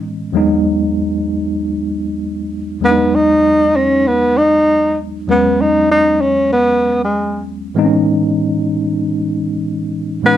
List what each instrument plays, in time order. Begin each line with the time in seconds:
Already playing: tine electric piano A2 E3 G#3 B3 C#4 D#5
0.33 tine electric piano E2 F#3 G#3 B3
0.37 tine electric piano D#4
2.80 tine electric piano E2 F#3 G#3 B3
2.84 tenor saxophone B3, tine electric piano D4
2.91 tine electric piano D#4
3.16 tenor saxophone D#4
3.76 tenor saxophone C#4
4.07 tenor saxophone B3
4.38 tenor saxophone D#4
5.27 tine electric piano E2 F#3 G#3 B3 C#4, tenor saxophone B3
5.61 tenor saxophone D#4
5.91 tenor saxophone D#4
6.21 tenor saxophone C#4
6.53 tenor saxophone B3
7.04 tenor saxophone G#3
7.75 tine electric piano A2 E3 G#3 B3 C4
7.79 tine electric piano D#4
7.84 tine electric piano C#4
10.22 tine electric piano A2 E3 G#3 B3 C#4, tenor saxophone B3
10.26 tine electric piano D#4